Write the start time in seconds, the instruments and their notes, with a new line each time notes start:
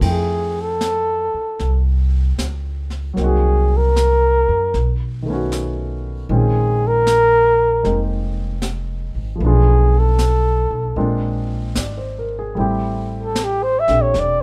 Already playing: grand piano A#4
0.00 upright bass F2, grand piano F3 A3 C4 E4, brush sweep, kick, crash
0.04 grand piano G5
0.10 flugelhorn G#4
0.62 flugelhorn A4
0.81 snare, hi-hat pedal
1.34 muted upright bass stroke
1.59 upright bass C2, brush sweep, snare
2.38 upright bass C#2, snare, hi-hat pedal
2.90 snare
3.13 upright bass C2, grand piano F#3 A#3, brush sweep, snare
3.18 grand piano C4 D#4
3.24 grand piano F#4, flugelhorn G#4
3.77 flugelhorn A#4
3.96 snare, hi-hat pedal
4.49 upright bass F#2
4.74 upright bass B1, brush sweep, snare
5.22 grand piano D#3 A3
5.28 grand piano B3 C#4
5.33 grand piano F#4
5.52 snare, hi-hat pedal
6.29 upright bass A#1, grand piano D#3 G#3 C4 C#4 F4, brush sweep
6.36 flugelhorn G#4
6.87 flugelhorn A#4
7.07 snare, hi-hat pedal
7.83 upright bass F1, grand piano G#3 A#3 C4 D#4, brush sweep, snare
8.62 snare, hi-hat pedal
9.15 upright bass G#1
9.36 grand piano F3 A3
9.40 upright bass B1, grand piano B3, brush sweep
9.44 grand piano D4 F4, flugelhorn G#4
9.99 flugelhorn A4
10.19 snare, hi-hat pedal
10.71 upright bass B1
10.96 upright bass A#1, grand piano G#3 A#3 C4 D4 F4, brush sweep
11.75 upright bass G#1, grand piano D5, snare, hi-hat pedal
11.97 grand piano C5
12.19 grand piano A#4
12.39 grand piano G#4
12.55 upright bass A1, grand piano G3 A3 C4, brush sweep
12.59 grand piano E4 G4
13.23 flugelhorn A4
13.35 snare, hi-hat pedal
13.44 flugelhorn G4
13.63 flugelhorn C5
13.80 flugelhorn E5
13.88 upright bass A#1, grand piano C4 D4 G4 A4, snare
14.03 flugelhorn C#5
14.14 upright bass E1, brush sweep, snare
14.20 flugelhorn D5